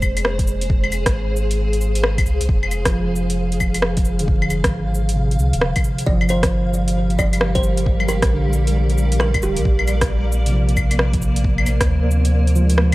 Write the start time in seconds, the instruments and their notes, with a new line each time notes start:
Already playing: tine electric piano G#3, ambient pad G#4 C5
0.02 sub bass F1, kick, cabasa, claves
0.17 closed hi-hat, claves
0.25 ambient pad F5, cross-stick
0.39 kick, closed hi-hat
0.47 cabasa
0.61 closed hi-hat
0.70 kick
0.84 claves
0.92 sub bass F1, closed hi-hat, cabasa, claves
1.06 sub bass G#1, kick, cross-stick, closed hi-hat
1.36 cabasa
1.51 closed hi-hat
1.73 closed hi-hat
1.81 cabasa
1.95 closed hi-hat
2.04 cross-stick
2.18 kick, closed hi-hat, claves
2.26 sub bass C2, cabasa
2.41 sub bass C2, closed hi-hat
2.49 sub bass F1, kick
2.63 claves
2.71 closed hi-hat, cabasa, claves
2.85 tine electric piano F3, kick, cross-stick, closed hi-hat
3.16 cabasa
3.30 closed hi-hat
3.52 closed hi-hat
3.60 sub bass F1, kick, cabasa, claves
3.74 closed hi-hat, claves
3.82 cross-stick
3.97 kick, closed hi-hat
4.05 cabasa
4.19 tine electric piano D3, closed hi-hat
4.28 kick
4.42 claves
4.50 sub bass F1, closed hi-hat, cabasa, claves
4.64 sub bass G#1, kick, cross-stick, closed hi-hat
4.95 cabasa
5.09 closed hi-hat
5.16 tine electric piano C3
5.31 closed hi-hat
5.39 sub bass C2, cabasa
5.53 sub bass D#1, closed hi-hat
5.61 cross-stick
5.76 kick, closed hi-hat, claves
5.84 cabasa
5.98 closed hi-hat
6.06 sub bass G1, ambient pad G3, kalimba D5, kick
6.11 tine electric piano F3
6.21 claves
6.29 ambient pad G4, kalimba C5, closed hi-hat, cabasa, claves
6.35 ambient pad A#4
6.43 kick, cross-stick, closed hi-hat
6.74 cabasa
6.88 closed hi-hat
7.10 closed hi-hat
7.19 sub bass G1, kalimba D5, kick, cabasa, claves
7.33 closed hi-hat, claves
7.41 cross-stick
7.55 kalimba C5, ambient pad D5, kick, closed hi-hat
7.63 cabasa
7.77 closed hi-hat
7.86 kick
8.00 claves
8.08 sub bass G1, kalimba A#4, closed hi-hat, cabasa, claves
8.22 sub bass A#1, kick, cross-stick, closed hi-hat
8.34 tine electric piano D3
8.53 cabasa
8.67 closed hi-hat
8.90 closed hi-hat
8.98 cabasa
9.12 closed hi-hat
9.20 kalimba A#4, cross-stick
9.34 kick, closed hi-hat, claves
9.42 sub bass D1, kalimba G4, cabasa
9.56 sub bass D2, closed hi-hat
9.65 sub bass A#1, ambient pad A#3, kick
9.79 claves
9.87 closed hi-hat, cabasa, claves
10.01 kick, cross-stick, closed hi-hat
10.32 cabasa
10.46 tine electric piano C3, ambient pad C5, closed hi-hat
10.51 tine electric piano F3
10.69 closed hi-hat
10.77 sub bass A#1, kick, cabasa, claves
10.91 closed hi-hat, claves
10.99 cross-stick
11.13 kick, closed hi-hat
11.22 cabasa
11.36 closed hi-hat
11.44 kick
11.58 claves
11.66 sub bass A#1, closed hi-hat, cabasa, claves
11.81 sub bass D2, kick, cross-stick, closed hi-hat
12.11 cabasa
12.25 closed hi-hat
12.47 closed hi-hat
12.56 tine electric piano F3, cabasa
12.61 tine electric piano G#3
12.70 closed hi-hat
12.78 cross-stick